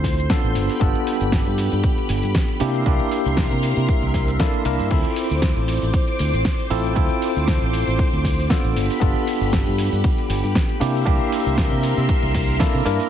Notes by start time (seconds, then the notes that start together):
Already playing: D2 C4 E4 F4 A4 C5 C6
0.04 kick, open hi-hat, shaker
0.18 closed hi-hat, shaker
0.30 B3 D4 F4 A4, kick, snare, closed hi-hat, shaker
0.44 A1, closed hi-hat
0.55 G1 G4 B5, open hi-hat, shaker
0.70 open hi-hat, shaker
0.80 G1 B3 D4 F4 A4, kick, closed hi-hat, shaker
0.95 closed hi-hat
1.07 open hi-hat, shaker
1.21 G1, closed hi-hat, shaker
1.32 kick, snare, closed hi-hat, shaker
1.46 G2, closed hi-hat
1.58 open hi-hat, shaker
1.72 G2, closed hi-hat, shaker
1.84 kick, closed hi-hat, shaker
1.98 closed hi-hat
2.09 G1, open hi-hat, shaker
2.23 G2, closed hi-hat, shaker
2.35 kick, snare, closed hi-hat, shaker
2.48 closed hi-hat
2.60 C3 A#3 D4 E4 G4 A#4 E5 C6, open hi-hat, shaker
2.74 closed hi-hat, shaker
2.85 C2 A#3 D4 E4 G4, kick, closed hi-hat, shaker
3.00 closed hi-hat
3.11 open hi-hat, shaker
3.26 C2, closed hi-hat, shaker
3.37 kick, snare, closed hi-hat, shaker
3.51 C3, closed hi-hat
3.63 open hi-hat, shaker
3.77 C3, closed hi-hat, shaker
3.88 kick, closed hi-hat, shaker
4.02 C2, closed hi-hat
4.14 kick, open hi-hat, shaker
4.28 closed hi-hat, shaker
4.40 A#3 D4 E4 A4, kick, snare, closed hi-hat, shaker
4.54 closed hi-hat
4.65 C2 A#3 D4 E4 A#4, open hi-hat, shaker
4.79 G2, open hi-hat, shaker
4.90 D2 C4 E4 F4 A4 C5 D6, kick, closed hi-hat, crash, ride, shaker
5.05 closed hi-hat
5.16 open hi-hat, ride, shaker
5.30 D2, closed hi-hat, shaker
5.42 kick, snare, closed hi-hat, ride, shaker
5.56 A1, closed hi-hat
5.68 open hi-hat, ride, shaker
5.82 A1, closed hi-hat, shaker
5.94 kick, closed hi-hat, ride, shaker
6.08 closed hi-hat
6.19 D2, open hi-hat, ride, shaker
6.34 A1, closed hi-hat, shaker
6.45 kick, snare, closed hi-hat, ride, shaker
6.59 closed hi-hat
6.70 A1 C4 E4 F4 A4, open hi-hat, ride, shaker
6.85 closed hi-hat, shaker
6.95 D2 C4 E4 F4 A4, kick, closed hi-hat, ride, shaker
7.10 closed hi-hat
7.22 open hi-hat, ride, shaker
7.36 D2, closed hi-hat, shaker
7.48 kick, snare, closed hi-hat, ride, shaker
7.62 A1, closed hi-hat
7.73 open hi-hat, ride, shaker
7.87 A1, closed hi-hat, shaker
7.99 kick, closed hi-hat, ride, shaker
8.13 D2, closed hi-hat
8.25 kick, open hi-hat, ride, shaker
8.39 closed hi-hat, shaker
8.49 B3 D4 F4 A4, kick, snare, closed hi-hat, ride, shaker
8.64 A1, closed hi-hat
8.76 G1 G4 B5, open hi-hat, ride, shaker
8.90 open hi-hat, shaker
9.00 G1 B3 D4 F4 A4, kick, closed hi-hat, ride, shaker
9.16 closed hi-hat
9.27 open hi-hat, ride, shaker
9.41 G1, closed hi-hat, shaker
9.53 kick, snare, closed hi-hat, ride, shaker
9.67 G2, closed hi-hat
9.78 open hi-hat, ride, shaker
9.92 G2, closed hi-hat, shaker
10.04 kick, closed hi-hat, ride, shaker
10.18 closed hi-hat
10.30 G1, open hi-hat, ride, shaker
10.44 G2, closed hi-hat, shaker
10.55 kick, snare, closed hi-hat, ride, shaker
10.69 closed hi-hat
10.80 C3 A#3 D4 E4 G4 A#4 E5 C6, open hi-hat, ride, shaker
10.95 closed hi-hat, shaker
11.05 C2 A#3 D4 E4 G4, kick, closed hi-hat, ride, shaker
11.21 closed hi-hat
11.32 open hi-hat, ride, shaker
11.46 C2, closed hi-hat, shaker
11.58 kick, snare, closed hi-hat, ride, shaker
11.71 C3, closed hi-hat
11.83 open hi-hat, ride, shaker
11.97 C3, closed hi-hat, shaker
12.09 kick, closed hi-hat, ride, shaker
12.23 C2, closed hi-hat
12.34 kick, open hi-hat, ride, shaker
12.48 closed hi-hat, shaker
12.59 A#3 D4 E4 A4, kick, snare, closed hi-hat, ride, shaker
12.74 C3, closed hi-hat
12.85 G2 A#3 D4 E4 A#4, open hi-hat, ride, shaker
13.00 open hi-hat, shaker